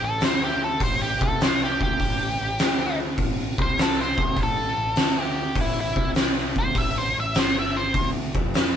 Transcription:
0.02 A1 A4
0.21 D2 C5, snare, open hi-hat
0.44 G4
0.64 A4
0.80 A1 C5, kick, open hi-hat
1.02 G4
1.21 C2 A4, kick
1.41 C5, snare, open hi-hat
1.64 G4
1.80 D2 G4, kick
2.00 A1, kick, open hi-hat
2.40 A1
2.59 D2, snare, open hi-hat
3.18 A1, kick, open hi-hat
3.58 C2 C5, kick
3.78 snare, open hi-hat
3.82 A4
4.01 C5
4.18 D2, kick
4.37 A1, kick, open hi-hat
4.43 A4
4.77 A1
4.96 D2, snare, open hi-hat
5.20 G4
5.55 A1, kick, open hi-hat
5.61 E4
5.81 E4
5.96 C2, kick
6.15 snare, open hi-hat
6.37 snare
6.56 D2 C5, kick
6.75 A1 E5, kick, open hi-hat
6.98 C5
7.17 A1 E5
7.35 G1, snare, open hi-hat
7.39 C5
7.59 E5
7.77 C5
7.94 D2, kick, open hi-hat
8.35 F2, kick
8.54 snare, open hi-hat

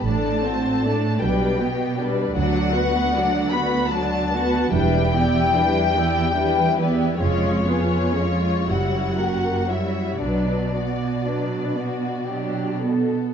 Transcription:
0.03 A1 A2 A3 D4 A4 D5 A5
0.43 C4 F#4 C5
0.82 A3 D4 A4 D5
1.21 B1 B2 G3 D4 B4 D5 G5
1.59 B3 G4 B4
1.97 G3 D4 B4 D5
2.35 D2 F#3 D4 F#4 D5 F#5
2.73 B3 F#4 B4 F#5
3.13 F#3 D4 F#4 D5
3.50 B3 F#4 B4 F#5 B5
3.90 F#3 D4 F#4 D5 A5
4.31 B3 F#4 B4 F#5
4.71 E1 E2 G3 D4 E4 B4 G5
5.12 B3 E4 G4 D5
5.54 G3 D4 E4 B4
5.94 B3 E4 G4 D5
6.35 G3 D4 E4 B4
6.77 B3 E4 G4 B4 D5
7.19 F1 F2 G#3 C#4 F4 C#5
7.65 B3 F4 G#4 B4
8.15 G#3 C#4 F4 C#5
8.68 F#1 F#2 G3 E4 F#4 C#5 F#5
9.18 A#3 F#4 G4 A#4
9.69 G3 E4 F#4 C#5 E5
10.21 B1 B2 F#3 D4 B4 D5
10.73 B3 F#4 D5
11.25 F#3 D4 B4
11.75 B3 F#4
12.27 F#3 D4 G4
12.82 B3 A4

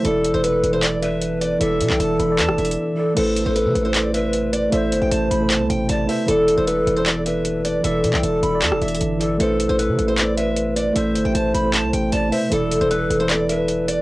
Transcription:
0.03 E1 E3 B3 D4 E4 A4, closed hi-hat
0.07 D5
0.25 closed hi-hat
0.34 E1 C5
0.44 B4, closed hi-hat
0.63 E1, closed hi-hat
0.71 E3 E4 A4 C5
0.76 B4
0.83 D5, clap, closed hi-hat
1.02 B4 E5, closed hi-hat
1.22 closed hi-hat
1.41 D5, closed hi-hat
1.58 E1 E3 E4 A4 E5, closed hi-hat
1.63 D5
1.80 B2, closed hi-hat
1.90 B1 G5, clap
2.00 E1 A5, closed hi-hat
2.19 E1 B5, closed hi-hat
2.27 E3 E4 A4
2.32 D5
2.39 E2 A5, clap, closed hi-hat
2.49 E1, cross-stick
2.58 E1 E5, closed hi-hat
2.65 closed hi-hat
2.71 closed hi-hat
2.95 E3 E4 A4
2.99 D5
3.14 A1 B2 C3 A3 E4 A4 B4, closed hi-hat, crash
3.19 C5
3.36 closed hi-hat
3.46 A1 C5
3.56 B4, closed hi-hat
3.65 C3
3.75 A1, closed hi-hat
3.82 A3 E4 B4 C5
3.87 C5
3.95 D5, clap, closed hi-hat
4.14 B4 E5, closed hi-hat
4.33 closed hi-hat
4.53 D5, closed hi-hat
4.70 A1 A3 E4 A4 C5 E5, closed hi-hat
4.75 C5
4.92 G1, closed hi-hat
5.02 A1 G5
5.11 A1 A5, closed hi-hat
5.31 A1 B5, closed hi-hat
5.38 A3 E4 A4
5.43 C5
5.50 A5, clap, closed hi-hat
5.60 C2
5.70 A1 G5, closed hi-hat
5.89 A1 D5 A5, closed hi-hat
6.06 A3 E4 B4 C5 E5, open hi-hat
6.11 C5
6.26 E1 E3 D4 E4 A4, closed hi-hat
6.31 D5
6.48 closed hi-hat
6.58 E1 C5
6.67 B4, closed hi-hat
6.87 E1, closed hi-hat
6.94 E3 E4 A4 C5
6.99 B4
7.06 D5, clap, closed hi-hat
7.26 B4 E5, closed hi-hat
7.45 closed hi-hat
7.65 D5, closed hi-hat
7.82 E1 E3 E4 A4 E5, closed hi-hat
7.87 D5
8.04 B2, closed hi-hat
8.13 B1 G5, clap
8.23 E1 A5, closed hi-hat
8.43 E1 B5, closed hi-hat
8.50 E3 E4 A4
8.55 D5
8.62 E2 A5, clap, closed hi-hat
8.72 E1, cross-stick
8.82 E1 E5, closed hi-hat
8.88 closed hi-hat
8.95 closed hi-hat
9.01 G1, closed hi-hat
9.18 E3 E4 A4, closed hi-hat
9.23 D5
9.38 A1 C3 A3 E4 A4 B4, closed hi-hat
9.42 C5
9.60 closed hi-hat
9.69 A1 C5
9.79 B4, closed hi-hat
9.89 C3
9.98 A1, closed hi-hat
10.06 A3 E4 B4 C5
10.11 C5
10.18 D5, clap, closed hi-hat
10.37 B4 E5, closed hi-hat
10.57 closed hi-hat
10.76 D5, closed hi-hat
10.93 A1 A3 E4 A4 C5 E5, closed hi-hat
10.98 C5
11.15 G1, closed hi-hat
11.25 A1 G5
11.35 A1 A5, closed hi-hat
11.54 A1 B5, closed hi-hat
11.62 A3 E4 A4
11.67 C5
11.74 A5, clap, closed hi-hat
11.83 C2
11.93 A1 G5, closed hi-hat
12.12 A1 D5 A5, closed hi-hat
12.29 A3 E4 B4 C5 E5, open hi-hat
12.34 C5
12.49 E1 E3 B3 D4 E4 A4, closed hi-hat
12.54 D5
12.71 closed hi-hat
12.81 E1 C5
12.91 B4, closed hi-hat
13.10 E1, closed hi-hat
13.18 E3 E4 A4 C5
13.22 B4
13.30 D5, clap, closed hi-hat
13.49 B4 E5, closed hi-hat
13.68 closed hi-hat
13.88 D5, closed hi-hat

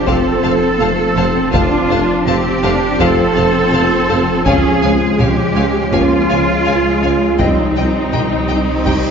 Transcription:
Already playing: F1 F3 C4 F4 C5
0.07 F1 F3 C4 A4 C5 F5 A5, taiko
0.43 F1 C5 F5 A5
0.80 F1 A3 C5 F5 A5
1.17 F1 C4 C5 F5 A5
1.52 F1 F3 C4 D4 F4 C5 F5 A5, taiko
1.89 F1 C5 F5 A5
2.26 F1 C4 G4 C5 F5 A5
2.62 F1 D4 C5 F5 A5
2.99 F1 F3 C4 A4 C5 F5 A5, taiko
3.35 F1 C5 F5 A5
3.72 F1 C5 F5 A5
4.09 F1 C5 F5 A5
4.45 C#2 F3 G#3 C#4 G#4 C#5 F5 G#5, taiko
4.82 C#2 G#3 C#5 F5 G#5
5.18 C#2 G4 C#5 F5 G#5, taiko mid
5.56 C#2 C#5 F5 G#5
5.91 C#2 F3 A#3 C#4 F4 C#5 F5 G#5, taiko
6.29 C#2 G#3 C#5 F5 G#5
6.65 C#2 C#5 F5 G#5
7.02 C#2 C#5 F5 G#5
7.38 C2 D#3 G3 C4 D#4 G4 C5 D#5 G5, taiko, cymbal swell
7.76 C2 D#5 G5
8.12 C2 D#5 G5, taiko mid
8.48 C2 D#5 G5
8.85 C2 G3 D#4 D#5 G5, taiko

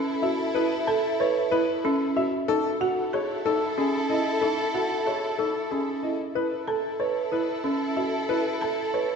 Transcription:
Already playing: C#4 E4 A4
0.22 F#4 E5
0.55 E4 B4
0.87 A4 A5
1.20 B4 C#5
1.51 E4 B4
1.84 C#4 A4
2.17 F#4 E5
2.48 D#4 E4 A4
2.81 F#4 F#5
3.13 G#4 C#5
3.46 D#4 A4
3.78 C#4 G#4
4.10 E4 D#5
4.41 D#4 A4
4.74 F#4 F#5
5.06 G#4 C#5
5.39 D#4 A4
5.71 C#4 G#4
6.03 E4 D#5
6.35 E4 A4 B4
6.68 A4 A5
7.00 B4 C#5
7.32 E4 B4
7.64 C#4 A4
7.97 F#4 E5
8.29 E4 B4
8.61 A4 A5
8.94 B4 C#5

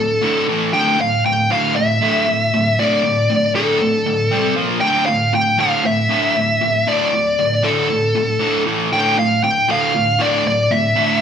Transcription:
Already playing: D2 A2 A4
0.21 D2 A2 D3
0.48 A2 E3 A3
0.73 D2 A2 D3 G5
0.99 D2 A2 F5
1.25 D2 A2 G5
1.50 D2 A2 D3 F5
1.76 D2 A2 E5
2.02 D2 A2 D3
2.27 D2 A2
2.54 D2 A2
2.79 D2 A2 D3 D5
3.04 D2 A2
3.30 D2 A2
3.55 D2 A2 D3 A4
3.81 D2 A2
4.06 D2 A2
4.31 C3 G3 C4
4.56 A#2 F3 A#3
4.81 D2 A2 D3 G5
5.06 D2 A2 F5
5.33 D2 A2 G5
5.58 D2 A2 D3 F5
5.84 D2 A2 E5
6.10 D2 A2 D3
6.36 D2 A2
6.61 D2 A2
6.87 D2 A2 D3 D5
7.13 D2 A2
7.39 D2 A2
7.63 D2 A2 D3 A4
7.90 D2 A2
8.15 D2 A2
8.39 D2 A2 D3
8.66 A2 E3 A3
8.92 D2 A2 D3 G5
9.17 D2 A2 F5
9.43 D2 A2 G5
9.68 D2 A2 D3 F5
9.95 D2 A2
10.19 D2 A2 D3 D5
10.44 D2 A2 D5
10.71 D2 A2 E5
10.95 D2 A2 D3

